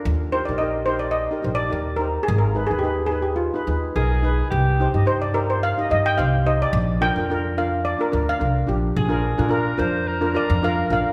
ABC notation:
X:1
M:4/4
L:1/16
Q:"Swing 16ths" 1/4=108
K:Eb
V:1 name="Steel pan"
z2 c d e2 c d e3 d3 B2 | A B2 A G2 A G F6 z2 | z4 c d B c f2 e g f2 e d- | d2 g4 f2 d B2 f4- f |
z8 z2 d2 f2 f2 |]
V:2 name="Alto saxophone"
z16 | z12 A4 | G3 z12 z | z16 |
A4 B2 c2 B2 B6 |]
V:3 name="Steel pan"
z2 [EGB] [EGB] [EGB] z [EGB]2 z [EGB] [EGc] z [EGB] z [EGc]2 | z2 [EA_c] [EAc] [EAc] z [EAc]2 z [EAc] [EAc] z [EAB] z [EAc]2 | z2 [EGc] [EGe] [EGc] z [EGc]2 z [EGe] [EGe] z [EGc] z [EGc]2 | z2 [DFB] [DFB] [DFB] z [DFB]2 z [DFB] [DFB] z [DFB] z [DFG]2 |
z [DFB] z [DFB] [DFB] z [DFB]2 z [DFB] [DFB] z [DFB] z [DFB]2 |]
V:4 name="Upright bass" clef=bass
E,,3 B,,,6- B,,, B,,,2 E,,4 | A,,,3 E,,6- E,, E,,2 _C,,4 | C,,3 G,,6- G,, G,,2 C,,4 | B,,,3 F,,6- F,, D,,2 C,,2 B,,,2 |
B,,,3 B,,3 F,,4- F,, F,,3 B,,, z |]